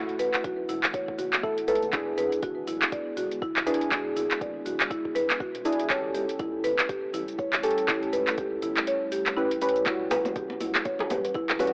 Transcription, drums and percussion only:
0.09 closed hi-hat
0.19 open hi-hat, cabasa
0.34 clap, closed hi-hat, cabasa
0.44 kick, closed hi-hat, cabasa
0.69 open hi-hat, cabasa
0.84 clap, closed hi-hat, cabasa
0.94 kick, closed hi-hat, cabasa
1.08 kick
1.19 open hi-hat, cabasa
1.33 clap, closed hi-hat, cabasa
1.44 kick, cabasa
1.58 closed hi-hat
1.68 open hi-hat, cabasa
1.75 closed hi-hat
1.83 closed hi-hat, cabasa
1.93 kick, clap, closed hi-hat, cabasa
2.18 open hi-hat, cabasa
2.32 closed hi-hat, cabasa
2.43 kick, closed hi-hat, cabasa
2.67 open hi-hat, cabasa
2.82 clap, closed hi-hat, cabasa
2.92 kick, closed hi-hat, cabasa
3.17 open hi-hat, cabasa
3.32 closed hi-hat, cabasa
3.42 kick, cabasa
3.57 clap, closed hi-hat
3.67 open hi-hat, cabasa
3.74 closed hi-hat
3.81 closed hi-hat, cabasa
3.92 kick, clap, closed hi-hat
4.17 open hi-hat, cabasa
4.31 clap, closed hi-hat, cabasa
4.41 kick, closed hi-hat, cabasa
4.66 open hi-hat, cabasa
4.80 clap, closed hi-hat, cabasa
4.91 kick, closed hi-hat, cabasa
5.05 kick
5.16 open hi-hat, cabasa
5.30 clap, closed hi-hat, cabasa
5.40 kick, cabasa
5.55 closed hi-hat
5.65 open hi-hat, cabasa
5.72 closed hi-hat
5.80 closed hi-hat, cabasa
5.90 kick, clap, closed hi-hat, cabasa
6.14 open hi-hat, cabasa
6.29 closed hi-hat, cabasa
6.39 kick, closed hi-hat, cabasa
6.64 open hi-hat, cabasa
6.79 clap, closed hi-hat, cabasa
6.89 kick, closed hi-hat, cabasa
7.14 open hi-hat, cabasa
7.28 closed hi-hat, cabasa
7.39 kick, cabasa
7.53 clap, closed hi-hat
7.63 open hi-hat, cabasa
7.71 closed hi-hat
7.78 closed hi-hat, cabasa
7.88 kick, clap, closed hi-hat
8.03 closed hi-hat
8.13 open hi-hat, cabasa
8.27 clap, closed hi-hat, cabasa
8.38 kick, closed hi-hat, cabasa
8.62 open hi-hat, cabasa
8.77 clap, closed hi-hat, cabasa
8.87 closed hi-hat, cabasa
9.12 open hi-hat, cabasa
9.26 clap, closed hi-hat, cabasa
9.37 cabasa
9.51 closed hi-hat
9.61 open hi-hat, cabasa
9.69 closed hi-hat
9.76 closed hi-hat, cabasa
9.86 kick, clap, closed hi-hat, muted conga, cabasa
10.10 open hi-hat, djembe slap, muted conga, djembe tone, cabasa
10.25 closed hi-hat, high conga, cabasa
10.36 kick, closed hi-hat, djembe tone, cabasa
10.50 muted conga
10.61 open hi-hat, high conga, cabasa
10.75 clap, closed hi-hat, muted conga, djembe tone, cabasa
10.85 kick, closed hi-hat, high conga, cabasa
10.99 muted conga, djembe slap, djembe tone, low conga
11.10 open hi-hat, djembe slap, high conga, cabasa
11.25 closed hi-hat, cabasa
11.34 kick, muted conga, djembe tone, cabasa
11.49 clap, closed hi-hat, djembe slap
11.59 open hi-hat, muted conga, djembe tone, cabasa
11.67 closed hi-hat

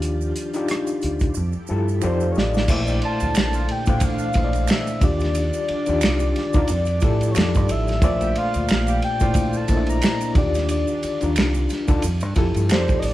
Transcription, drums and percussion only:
0.02 closed hi-hat, maracas
0.21 maracas
0.36 closed hi-hat, maracas
0.54 closed hi-hat, maracas
0.69 finger snap, cross-stick, closed hi-hat, maracas
0.87 closed hi-hat, maracas
1.01 closed hi-hat, maracas
1.20 kick, closed hi-hat, maracas
1.34 maracas
1.53 maracas
1.67 maracas
1.89 maracas
2.02 finger snap, maracas
2.20 maracas
2.35 snare, maracas
2.54 snare, maracas
2.68 kick, crash, maracas
2.87 maracas
3.02 ride
3.20 ride, maracas
3.35 finger snap, ride, maracas
3.37 finger snap, snare
3.53 ride, maracas
3.69 ride
3.86 kick, ride, maracas
4.00 kick, ride, maracas
4.19 maracas
4.33 kick, ride, maracas
4.53 ride, maracas
4.68 finger snap, ride, maracas
4.70 finger snap, snare
4.87 ride, maracas
5.01 kick, ride, maracas
5.20 snare, ride, maracas
5.35 ride, maracas
5.53 ride, maracas
5.68 ride
5.86 ride, maracas
6.01 finger snap, ride, maracas
6.03 finger snap, snare
6.19 ride, maracas
6.36 snare, ride
6.53 kick, ride, maracas
6.67 ride, maracas
6.86 ride, maracas
7.00 kick, ride, maracas
7.21 ride, maracas
7.35 finger snap, ride, maracas
7.38 finger snap, snare
7.55 kick, ride, maracas
7.69 ride, maracas
7.88 snare, ride, maracas
8.02 kick, ride, maracas
8.21 ride, maracas
8.35 ride
8.54 ride, maracas
8.69 finger snap, ride, maracas
8.71 finger snap, snare
8.87 ride, maracas
9.02 ride
9.20 kick, ride, maracas
9.34 kick, ride, maracas
9.53 maracas
9.68 kick, ride, maracas
9.87 ride, maracas
10.02 finger snap, snare, ride, maracas
10.21 ride, maracas
10.35 kick, ride, maracas
10.55 snare, ride, maracas
10.69 ride, maracas
10.87 maracas
11.03 ride, maracas
11.21 ride, maracas
11.36 finger snap, ride, maracas
11.38 finger snap, snare
11.54 maracas
11.69 snare, ride, maracas
11.88 kick, ride, maracas
12.02 ride, maracas
12.20 ride, maracas
12.35 kick, ride, maracas
12.54 ride, maracas
12.69 finger snap, ride, maracas
12.71 finger snap, snare
12.88 kick, ride, maracas
13.02 open hi-hat, ride, maracas

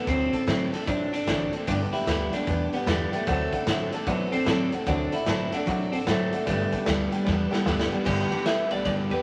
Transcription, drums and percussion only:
0.07 kick, closed hi-hat
0.33 kick, closed hi-hat
0.48 snare, closed hi-hat
0.74 snare, closed hi-hat
0.87 kick, closed hi-hat
1.14 closed hi-hat
1.28 snare, closed hi-hat
1.53 closed hi-hat
1.68 kick, closed hi-hat
1.94 closed hi-hat
2.07 snare, closed hi-hat
2.33 snare, closed hi-hat
2.47 kick, closed hi-hat
2.73 closed hi-hat
2.87 snare, closed hi-hat
3.13 closed hi-hat
3.27 kick, closed hi-hat
3.53 kick, closed hi-hat
3.67 snare, closed hi-hat
3.92 closed hi-hat
4.07 kick, closed hi-hat
4.32 closed hi-hat
4.46 snare, closed hi-hat
4.72 closed hi-hat
4.87 kick, closed hi-hat
5.12 closed hi-hat
5.27 snare, closed hi-hat
5.52 snare, closed hi-hat
5.67 kick, closed hi-hat
5.93 closed hi-hat
6.07 snare, closed hi-hat
6.33 closed hi-hat
6.47 kick, closed hi-hat
6.72 kick, closed hi-hat
6.86 snare, closed hi-hat
7.12 closed hi-hat
7.26 kick, snare
7.53 snare
7.66 snare
7.79 snare
8.06 kick, crash
8.32 ride
8.46 snare, ride
8.71 ride
8.85 kick, snare, ride
9.11 ride

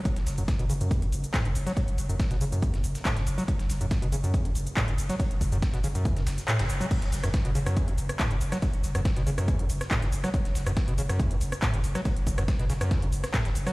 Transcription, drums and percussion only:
0.05 kick, closed hi-hat, shaker
0.16 snare, closed hi-hat
0.27 snare, closed hi-hat, open hi-hat, shaker
0.38 closed hi-hat, shaker
0.48 kick, snare, closed hi-hat, shaker
0.59 closed hi-hat
0.70 closed hi-hat, open hi-hat, shaker
0.81 closed hi-hat, shaker
0.91 kick, closed hi-hat, shaker
1.02 closed hi-hat
1.12 closed hi-hat, open hi-hat, shaker
1.24 closed hi-hat, shaker
1.34 kick, snare, clap, closed hi-hat, shaker
1.45 closed hi-hat
1.55 closed hi-hat, open hi-hat, shaker
1.67 snare, closed hi-hat, shaker
1.77 kick, closed hi-hat, open hi-hat, shaker
1.88 closed hi-hat
1.98 closed hi-hat, open hi-hat, shaker
2.10 closed hi-hat, shaker
2.20 kick, snare, closed hi-hat, shaker
2.31 snare, closed hi-hat
2.41 closed hi-hat, open hi-hat, shaker
2.52 closed hi-hat, shaker
2.62 kick, closed hi-hat, shaker
2.74 snare, closed hi-hat
2.84 closed hi-hat, open hi-hat, shaker
2.95 snare, closed hi-hat, shaker
3.05 kick, snare, clap, closed hi-hat, shaker
3.16 snare, closed hi-hat
3.27 closed hi-hat, open hi-hat, shaker
3.38 snare, open hi-hat, shaker
3.48 kick, closed hi-hat, shaker
3.59 snare, closed hi-hat
3.70 snare, closed hi-hat, open hi-hat, shaker
3.81 closed hi-hat, shaker
3.91 kick, snare, closed hi-hat, shaker
4.02 closed hi-hat
4.12 closed hi-hat, open hi-hat, shaker
4.24 closed hi-hat, shaker
4.34 kick, closed hi-hat, shaker
4.45 closed hi-hat
4.55 closed hi-hat, open hi-hat, shaker
4.67 closed hi-hat, shaker
4.77 kick, snare, clap, closed hi-hat, shaker
4.88 closed hi-hat
4.98 closed hi-hat, open hi-hat, shaker
5.09 snare, closed hi-hat, shaker
5.20 kick, closed hi-hat, open hi-hat, shaker
5.31 closed hi-hat
5.41 kick, closed hi-hat, open hi-hat, shaker
5.52 closed hi-hat, shaker
5.62 kick, snare, closed hi-hat, shaker
5.74 snare, closed hi-hat
5.84 closed hi-hat, open hi-hat, shaker
5.95 closed hi-hat, shaker
6.05 kick, closed hi-hat, shaker
6.16 snare, closed hi-hat
6.27 snare, closed hi-hat, open hi-hat, shaker
6.38 snare, closed hi-hat, shaker
6.48 clap, closed hi-hat, shaker
6.59 snare, closed hi-hat
6.70 snare, open hi-hat, shaker
6.81 closed hi-hat, open hi-hat, shaker
6.91 kick, closed hi-hat, crash, shaker
7.02 snare, closed hi-hat
7.12 snare, closed hi-hat, open hi-hat, shaker
7.24 cross-stick, closed hi-hat, shaker
7.34 kick, snare, closed hi-hat, shaker
7.45 closed hi-hat
7.55 closed hi-hat, open hi-hat, shaker
7.66 cross-stick, closed hi-hat, shaker
7.77 kick, closed hi-hat, shaker
7.88 closed hi-hat
7.98 closed hi-hat, open hi-hat, shaker
8.09 cross-stick, closed hi-hat, shaker
8.20 kick, snare, clap, closed hi-hat, shaker
8.31 closed hi-hat
8.41 closed hi-hat, open hi-hat, shaker
8.52 cross-stick, snare, closed hi-hat, shaker
8.62 kick, closed hi-hat, open hi-hat, shaker
8.73 closed hi-hat
8.84 closed hi-hat, open hi-hat, shaker
8.95 cross-stick, closed hi-hat, shaker
9.05 kick, snare, closed hi-hat, shaker
9.16 snare, closed hi-hat
9.27 closed hi-hat, open hi-hat, shaker
9.38 cross-stick, closed hi-hat, shaker
9.48 kick, closed hi-hat, shaker
9.59 closed hi-hat
9.70 closed hi-hat, open hi-hat, shaker
9.81 cross-stick, snare, closed hi-hat, shaker
9.91 kick, snare, clap, closed hi-hat, shaker
10.02 snare, closed hi-hat
10.13 closed hi-hat, open hi-hat, shaker
10.24 cross-stick, snare, open hi-hat, shaker
10.34 kick, closed hi-hat, shaker
10.45 snare, closed hi-hat
10.55 snare, closed hi-hat, open hi-hat, shaker
10.67 cross-stick, closed hi-hat, shaker
10.77 kick, snare, closed hi-hat, shaker
10.88 closed hi-hat
10.98 closed hi-hat, open hi-hat, shaker
11.09 cross-stick, closed hi-hat, shaker
11.20 kick, closed hi-hat, shaker
11.31 closed hi-hat
11.41 closed hi-hat, open hi-hat, shaker
11.52 cross-stick, closed hi-hat, shaker
11.62 kick, snare, clap, closed hi-hat, shaker
11.74 closed hi-hat
11.84 closed hi-hat, open hi-hat, shaker
11.95 cross-stick, snare, closed hi-hat, shaker
12.05 kick, closed hi-hat, open hi-hat, shaker
12.17 closed hi-hat
12.27 kick, closed hi-hat, open hi-hat, shaker
12.38 cross-stick, closed hi-hat, shaker
12.48 kick, snare, closed hi-hat, shaker
12.59 snare, closed hi-hat
12.70 snare, closed hi-hat, open hi-hat, shaker
12.81 cross-stick, closed hi-hat, shaker
12.91 kick, snare, closed hi-hat, shaker
13.02 closed hi-hat
13.12 closed hi-hat, open hi-hat, shaker
13.24 cross-stick, snare, closed hi-hat, shaker
13.34 kick, snare, clap, closed hi-hat, shaker
13.45 snare, closed hi-hat
13.55 closed hi-hat, open hi-hat, shaker
13.67 cross-stick, snare, open hi-hat, shaker

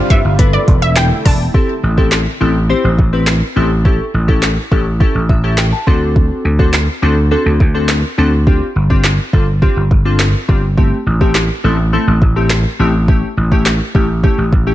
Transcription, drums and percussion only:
0.10 kick, closed hi-hat
0.39 kick, closed hi-hat
0.68 kick, closed hi-hat
0.82 closed hi-hat
0.96 snare, clap, closed hi-hat
1.26 kick, open hi-hat
1.54 kick
1.98 kick
2.12 snare, clap
2.99 kick
3.27 snare, clap
3.85 kick
4.28 kick
4.43 snare, clap
4.72 kick
5.00 kick
5.29 kick
5.58 snare, clap
5.87 kick
6.16 kick
6.59 kick
6.73 snare, clap
7.60 kick
7.89 snare, clap
8.47 kick
8.90 kick
9.04 snare, clap
9.33 kick
9.62 kick
9.91 kick
10.19 snare, clap
10.49 kick
10.78 kick
11.21 kick
11.35 snare, clap
12.22 kick
12.50 snare, clap
13.08 kick
13.52 kick
13.66 snare, clap
13.95 kick
14.24 kick
14.53 kick

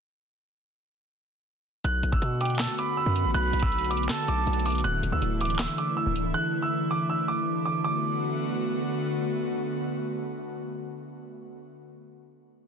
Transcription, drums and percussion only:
1.84 closed hi-hat
2.03 closed hi-hat
2.13 kick
2.22 closed hi-hat
2.41 closed hi-hat
2.45 closed hi-hat
2.50 closed hi-hat
2.55 closed hi-hat
2.59 snare, clap, closed hi-hat
2.78 closed hi-hat
3.16 closed hi-hat
3.34 closed hi-hat
3.53 closed hi-hat
3.59 kick, closed hi-hat
3.66 closed hi-hat
3.72 closed hi-hat
3.78 closed hi-hat
3.84 closed hi-hat
3.91 closed hi-hat
3.97 closed hi-hat
4.03 closed hi-hat
4.09 snare, clap, closed hi-hat
4.16 closed hi-hat
4.22 closed hi-hat
4.28 closed hi-hat
4.47 closed hi-hat
4.53 closed hi-hat
4.59 closed hi-hat
4.66 closed hi-hat, open hi-hat
4.70 closed hi-hat
4.72 closed hi-hat
4.75 closed hi-hat
4.78 closed hi-hat
4.80 closed hi-hat
4.84 closed hi-hat
5.03 closed hi-hat
5.22 closed hi-hat
5.41 closed hi-hat
5.45 closed hi-hat
5.50 closed hi-hat
5.55 closed hi-hat
5.59 snare, clap, closed hi-hat
5.78 closed hi-hat
6.16 closed hi-hat

